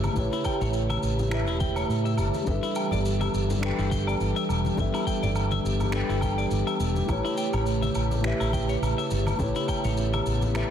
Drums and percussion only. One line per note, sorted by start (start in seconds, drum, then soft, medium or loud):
0.04 high conga medium
0.04 low woodblock medium
0.04 shaker soft
0.16 kick loud
0.16 low conga medium
0.16 shaker medium
0.33 shaker soft
0.44 kick medium
0.44 low woodblock medium
0.44 shaker medium
0.61 low conga medium
0.61 shaker soft
0.73 shaker medium
0.90 high conga medium
0.90 low woodblock medium
0.90 shaker soft
1.03 shaker medium
1.19 low conga medium
1.19 shaker soft
1.31 finger snap medium
1.31 low woodblock medium
1.31 shaker medium
1.47 shaker soft
1.60 kick medium
1.60 high conga medium
1.60 shaker medium
1.76 low woodblock medium
1.76 shaker soft
1.90 shaker medium
2.06 shaker soft
2.17 low woodblock medium
2.17 shaker medium
2.34 high conga medium
2.34 shaker soft
2.47 kick loud
2.47 low conga medium
2.47 shaker medium
2.63 shaker soft
2.75 low woodblock medium
2.75 shaker medium
2.91 low conga medium
2.91 shaker soft
3.05 shaker medium
3.20 high conga medium
3.20 low woodblock medium
3.20 shaker soft
3.34 shaker medium
3.50 low conga medium
3.50 shaker medium
3.62 finger snap medium
3.62 low woodblock medium
3.62 shaker medium
3.79 shaker soft
3.92 kick loud
3.92 high conga medium
3.92 shaker medium
4.07 low woodblock medium
4.07 shaker soft
4.20 shaker medium
4.36 shaker soft
4.49 low woodblock medium
4.49 shaker medium
4.65 high conga medium
4.65 shaker soft
4.77 kick loud
4.77 low conga medium
4.77 shaker medium
4.94 low woodblock medium
4.94 shaker soft
5.07 kick medium
5.07 shaker medium
5.23 low conga medium
5.23 shaker soft
5.35 low woodblock medium
5.35 shaker medium
5.51 high conga medium
5.51 shaker soft
5.66 shaker medium
5.80 low conga medium
5.80 low woodblock medium
5.80 shaker medium
5.92 finger snap medium
5.92 shaker medium
6.10 shaker soft
6.21 kick loud
6.21 high conga medium
6.21 low woodblock medium
6.21 shaker medium
6.38 shaker soft
6.51 shaker medium
6.67 low woodblock medium
6.67 shaker soft
6.80 shaker medium
6.96 high conga medium
6.96 shaker soft
7.09 kick loud
7.09 low conga medium
7.09 low woodblock medium
7.09 shaker medium
7.25 shaker soft
7.37 shaker medium
7.53 low conga medium
7.53 low woodblock medium
7.53 shaker medium
7.66 shaker medium
7.83 high conga medium
7.83 shaker soft
7.95 low woodblock medium
7.95 shaker medium
8.11 low conga medium
8.11 shaker soft
8.24 finger snap medium
8.24 shaker medium
8.40 low woodblock medium
8.40 shaker soft
8.53 kick loud
8.53 high conga medium
8.53 shaker medium
8.69 shaker soft
8.83 low woodblock medium
8.83 shaker medium
8.99 shaker soft
9.11 shaker medium
9.27 high conga medium
9.27 low woodblock medium
9.27 shaker medium
9.39 kick loud
9.39 low conga medium
9.39 shaker medium
9.55 shaker soft
9.68 kick medium
9.68 low woodblock medium
9.68 shaker medium
9.84 low conga medium
9.84 shaker soft
9.97 shaker medium
10.13 high conga medium
10.13 low woodblock medium
10.13 shaker soft
10.26 shaker medium
10.42 low conga medium
10.42 shaker soft
10.55 finger snap medium
10.55 low woodblock medium
10.55 shaker medium